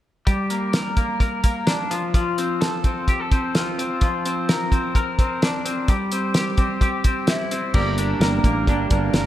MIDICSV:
0, 0, Header, 1, 5, 480
1, 0, Start_track
1, 0, Tempo, 467290
1, 279, Time_signature, 4, 2, 24, 8
1, 9513, End_track
2, 0, Start_track
2, 0, Title_t, "Clean electric guitar"
2, 0, Program_c, 0, 27
2, 275, Note_on_c, 0, 55, 69
2, 517, Note_on_c, 0, 58, 50
2, 755, Note_on_c, 0, 70, 49
2, 983, Note_off_c, 0, 58, 0
2, 995, Note_on_c, 0, 58, 53
2, 1224, Note_off_c, 0, 70, 0
2, 1236, Note_on_c, 0, 70, 58
2, 1463, Note_off_c, 0, 58, 0
2, 1476, Note_on_c, 0, 58, 52
2, 1713, Note_on_c, 0, 62, 53
2, 1956, Note_off_c, 0, 55, 0
2, 1960, Note_on_c, 0, 53, 74
2, 2005, Note_off_c, 0, 62, 0
2, 2006, Note_off_c, 0, 58, 0
2, 2007, Note_off_c, 0, 70, 0
2, 2199, Note_off_c, 0, 53, 0
2, 2203, Note_on_c, 0, 53, 74
2, 2448, Note_on_c, 0, 60, 52
2, 2680, Note_on_c, 0, 69, 59
2, 2921, Note_off_c, 0, 60, 0
2, 2925, Note_on_c, 0, 60, 51
2, 3161, Note_off_c, 0, 69, 0
2, 3173, Note_on_c, 0, 67, 62
2, 3285, Note_off_c, 0, 67, 0
2, 3285, Note_on_c, 0, 69, 45
2, 3408, Note_off_c, 0, 60, 0
2, 3412, Note_on_c, 0, 60, 57
2, 3655, Note_on_c, 0, 65, 50
2, 3884, Note_off_c, 0, 60, 0
2, 3888, Note_on_c, 0, 60, 54
2, 4120, Note_off_c, 0, 53, 0
2, 4132, Note_on_c, 0, 53, 75
2, 4171, Note_off_c, 0, 69, 0
2, 4176, Note_off_c, 0, 65, 0
2, 4371, Note_off_c, 0, 60, 0
2, 4375, Note_on_c, 0, 60, 54
2, 4612, Note_on_c, 0, 70, 57
2, 4847, Note_off_c, 0, 60, 0
2, 4851, Note_on_c, 0, 60, 50
2, 5079, Note_off_c, 0, 70, 0
2, 5092, Note_on_c, 0, 70, 64
2, 5332, Note_off_c, 0, 60, 0
2, 5336, Note_on_c, 0, 60, 56
2, 5573, Note_on_c, 0, 62, 53
2, 5803, Note_off_c, 0, 60, 0
2, 5807, Note_on_c, 0, 60, 56
2, 6046, Note_off_c, 0, 53, 0
2, 6051, Note_on_c, 0, 55, 75
2, 6092, Note_off_c, 0, 60, 0
2, 6094, Note_off_c, 0, 70, 0
2, 6095, Note_off_c, 0, 62, 0
2, 6290, Note_on_c, 0, 60, 55
2, 6527, Note_on_c, 0, 67, 55
2, 6749, Note_off_c, 0, 60, 0
2, 6762, Note_on_c, 0, 60, 53
2, 7001, Note_off_c, 0, 67, 0
2, 7005, Note_on_c, 0, 67, 58
2, 7232, Note_off_c, 0, 60, 0
2, 7244, Note_on_c, 0, 60, 54
2, 7486, Note_on_c, 0, 64, 47
2, 7709, Note_off_c, 0, 60, 0
2, 7721, Note_on_c, 0, 60, 52
2, 7945, Note_off_c, 0, 55, 0
2, 7955, Note_on_c, 0, 55, 78
2, 7958, Note_off_c, 0, 67, 0
2, 7962, Note_on_c, 0, 70, 57
2, 8009, Note_off_c, 0, 60, 0
2, 8011, Note_off_c, 0, 64, 0
2, 8200, Note_on_c, 0, 62, 54
2, 8428, Note_off_c, 0, 70, 0
2, 8440, Note_on_c, 0, 70, 60
2, 8681, Note_on_c, 0, 58, 53
2, 8915, Note_off_c, 0, 62, 0
2, 8928, Note_on_c, 0, 62, 54
2, 9151, Note_off_c, 0, 58, 0
2, 9163, Note_on_c, 0, 58, 57
2, 9388, Note_off_c, 0, 70, 0
2, 9400, Note_on_c, 0, 70, 59
2, 9513, Note_off_c, 0, 55, 0
2, 9513, Note_off_c, 0, 58, 0
2, 9513, Note_off_c, 0, 62, 0
2, 9513, Note_off_c, 0, 70, 0
2, 9513, End_track
3, 0, Start_track
3, 0, Title_t, "Clean electric guitar"
3, 0, Program_c, 1, 27
3, 7951, Note_on_c, 1, 55, 51
3, 7959, Note_on_c, 1, 58, 56
3, 7966, Note_on_c, 1, 62, 63
3, 7977, Note_on_c, 1, 67, 69
3, 8421, Note_off_c, 1, 55, 0
3, 8431, Note_off_c, 1, 58, 0
3, 8433, Note_on_c, 1, 55, 59
3, 8434, Note_off_c, 1, 62, 0
3, 8443, Note_off_c, 1, 67, 0
3, 8443, Note_on_c, 1, 58, 63
3, 8447, Note_on_c, 1, 62, 58
3, 8455, Note_on_c, 1, 67, 61
3, 8899, Note_off_c, 1, 55, 0
3, 8903, Note_off_c, 1, 58, 0
3, 8910, Note_off_c, 1, 62, 0
3, 8911, Note_on_c, 1, 55, 56
3, 8914, Note_off_c, 1, 67, 0
3, 8915, Note_on_c, 1, 58, 58
3, 8923, Note_on_c, 1, 62, 64
3, 8926, Note_on_c, 1, 67, 64
3, 9124, Note_off_c, 1, 55, 0
3, 9133, Note_off_c, 1, 58, 0
3, 9136, Note_on_c, 1, 55, 56
3, 9140, Note_off_c, 1, 62, 0
3, 9142, Note_off_c, 1, 67, 0
3, 9146, Note_on_c, 1, 58, 56
3, 9152, Note_on_c, 1, 62, 60
3, 9155, Note_on_c, 1, 67, 60
3, 9486, Note_off_c, 1, 67, 0
3, 9493, Note_off_c, 1, 62, 0
3, 9499, Note_off_c, 1, 58, 0
3, 9508, Note_off_c, 1, 55, 0
3, 9513, End_track
4, 0, Start_track
4, 0, Title_t, "Fretless electric bass"
4, 0, Program_c, 2, 35
4, 7955, Note_on_c, 2, 31, 86
4, 8350, Note_off_c, 2, 31, 0
4, 8428, Note_on_c, 2, 31, 88
4, 8629, Note_off_c, 2, 31, 0
4, 8668, Note_on_c, 2, 33, 67
4, 8911, Note_off_c, 2, 33, 0
4, 8911, Note_on_c, 2, 31, 81
4, 9111, Note_off_c, 2, 31, 0
4, 9152, Note_on_c, 2, 31, 82
4, 9352, Note_off_c, 2, 31, 0
4, 9387, Note_on_c, 2, 31, 97
4, 9513, Note_off_c, 2, 31, 0
4, 9513, End_track
5, 0, Start_track
5, 0, Title_t, "Drums"
5, 275, Note_on_c, 9, 42, 74
5, 277, Note_on_c, 9, 36, 85
5, 378, Note_off_c, 9, 42, 0
5, 380, Note_off_c, 9, 36, 0
5, 515, Note_on_c, 9, 42, 61
5, 618, Note_off_c, 9, 42, 0
5, 754, Note_on_c, 9, 42, 84
5, 757, Note_on_c, 9, 38, 91
5, 856, Note_off_c, 9, 42, 0
5, 860, Note_off_c, 9, 38, 0
5, 993, Note_on_c, 9, 42, 52
5, 994, Note_on_c, 9, 36, 67
5, 1096, Note_off_c, 9, 42, 0
5, 1097, Note_off_c, 9, 36, 0
5, 1235, Note_on_c, 9, 36, 70
5, 1239, Note_on_c, 9, 42, 68
5, 1337, Note_off_c, 9, 36, 0
5, 1342, Note_off_c, 9, 42, 0
5, 1476, Note_on_c, 9, 42, 69
5, 1479, Note_on_c, 9, 36, 78
5, 1578, Note_off_c, 9, 42, 0
5, 1582, Note_off_c, 9, 36, 0
5, 1713, Note_on_c, 9, 42, 76
5, 1718, Note_on_c, 9, 38, 80
5, 1816, Note_off_c, 9, 42, 0
5, 1820, Note_off_c, 9, 38, 0
5, 1963, Note_on_c, 9, 42, 62
5, 2065, Note_off_c, 9, 42, 0
5, 2201, Note_on_c, 9, 36, 85
5, 2204, Note_on_c, 9, 42, 81
5, 2303, Note_off_c, 9, 36, 0
5, 2306, Note_off_c, 9, 42, 0
5, 2445, Note_on_c, 9, 42, 61
5, 2548, Note_off_c, 9, 42, 0
5, 2686, Note_on_c, 9, 42, 79
5, 2690, Note_on_c, 9, 38, 91
5, 2789, Note_off_c, 9, 42, 0
5, 2793, Note_off_c, 9, 38, 0
5, 2918, Note_on_c, 9, 42, 50
5, 2919, Note_on_c, 9, 36, 69
5, 3021, Note_off_c, 9, 42, 0
5, 3022, Note_off_c, 9, 36, 0
5, 3161, Note_on_c, 9, 36, 69
5, 3163, Note_on_c, 9, 42, 72
5, 3264, Note_off_c, 9, 36, 0
5, 3266, Note_off_c, 9, 42, 0
5, 3406, Note_on_c, 9, 36, 85
5, 3407, Note_on_c, 9, 42, 73
5, 3508, Note_off_c, 9, 36, 0
5, 3509, Note_off_c, 9, 42, 0
5, 3644, Note_on_c, 9, 42, 71
5, 3648, Note_on_c, 9, 38, 89
5, 3747, Note_off_c, 9, 42, 0
5, 3751, Note_off_c, 9, 38, 0
5, 3895, Note_on_c, 9, 42, 65
5, 3997, Note_off_c, 9, 42, 0
5, 4121, Note_on_c, 9, 42, 75
5, 4126, Note_on_c, 9, 36, 88
5, 4223, Note_off_c, 9, 42, 0
5, 4229, Note_off_c, 9, 36, 0
5, 4371, Note_on_c, 9, 42, 67
5, 4473, Note_off_c, 9, 42, 0
5, 4611, Note_on_c, 9, 42, 79
5, 4615, Note_on_c, 9, 38, 92
5, 4714, Note_off_c, 9, 42, 0
5, 4718, Note_off_c, 9, 38, 0
5, 4846, Note_on_c, 9, 36, 72
5, 4852, Note_on_c, 9, 42, 57
5, 4948, Note_off_c, 9, 36, 0
5, 4954, Note_off_c, 9, 42, 0
5, 5085, Note_on_c, 9, 36, 72
5, 5089, Note_on_c, 9, 42, 70
5, 5188, Note_off_c, 9, 36, 0
5, 5192, Note_off_c, 9, 42, 0
5, 5328, Note_on_c, 9, 36, 84
5, 5331, Note_on_c, 9, 42, 72
5, 5431, Note_off_c, 9, 36, 0
5, 5434, Note_off_c, 9, 42, 0
5, 5571, Note_on_c, 9, 42, 76
5, 5575, Note_on_c, 9, 38, 95
5, 5673, Note_off_c, 9, 42, 0
5, 5678, Note_off_c, 9, 38, 0
5, 5810, Note_on_c, 9, 42, 66
5, 5912, Note_off_c, 9, 42, 0
5, 6043, Note_on_c, 9, 42, 79
5, 6044, Note_on_c, 9, 36, 93
5, 6145, Note_off_c, 9, 42, 0
5, 6147, Note_off_c, 9, 36, 0
5, 6282, Note_on_c, 9, 42, 68
5, 6385, Note_off_c, 9, 42, 0
5, 6516, Note_on_c, 9, 42, 83
5, 6520, Note_on_c, 9, 38, 92
5, 6618, Note_off_c, 9, 42, 0
5, 6622, Note_off_c, 9, 38, 0
5, 6754, Note_on_c, 9, 42, 49
5, 6757, Note_on_c, 9, 36, 74
5, 6856, Note_off_c, 9, 42, 0
5, 6860, Note_off_c, 9, 36, 0
5, 6997, Note_on_c, 9, 36, 72
5, 7000, Note_on_c, 9, 42, 69
5, 7099, Note_off_c, 9, 36, 0
5, 7103, Note_off_c, 9, 42, 0
5, 7234, Note_on_c, 9, 42, 68
5, 7238, Note_on_c, 9, 36, 83
5, 7337, Note_off_c, 9, 42, 0
5, 7341, Note_off_c, 9, 36, 0
5, 7470, Note_on_c, 9, 42, 80
5, 7474, Note_on_c, 9, 38, 96
5, 7573, Note_off_c, 9, 42, 0
5, 7577, Note_off_c, 9, 38, 0
5, 7717, Note_on_c, 9, 42, 65
5, 7820, Note_off_c, 9, 42, 0
5, 7949, Note_on_c, 9, 49, 71
5, 7954, Note_on_c, 9, 36, 100
5, 8051, Note_off_c, 9, 49, 0
5, 8057, Note_off_c, 9, 36, 0
5, 8195, Note_on_c, 9, 42, 62
5, 8298, Note_off_c, 9, 42, 0
5, 8435, Note_on_c, 9, 42, 84
5, 8439, Note_on_c, 9, 38, 95
5, 8538, Note_off_c, 9, 42, 0
5, 8541, Note_off_c, 9, 38, 0
5, 8671, Note_on_c, 9, 36, 74
5, 8674, Note_on_c, 9, 42, 53
5, 8773, Note_off_c, 9, 36, 0
5, 8776, Note_off_c, 9, 42, 0
5, 8910, Note_on_c, 9, 36, 70
5, 8915, Note_on_c, 9, 42, 67
5, 9013, Note_off_c, 9, 36, 0
5, 9017, Note_off_c, 9, 42, 0
5, 9148, Note_on_c, 9, 42, 66
5, 9151, Note_on_c, 9, 36, 87
5, 9250, Note_off_c, 9, 42, 0
5, 9254, Note_off_c, 9, 36, 0
5, 9384, Note_on_c, 9, 42, 72
5, 9389, Note_on_c, 9, 38, 97
5, 9487, Note_off_c, 9, 42, 0
5, 9491, Note_off_c, 9, 38, 0
5, 9513, End_track
0, 0, End_of_file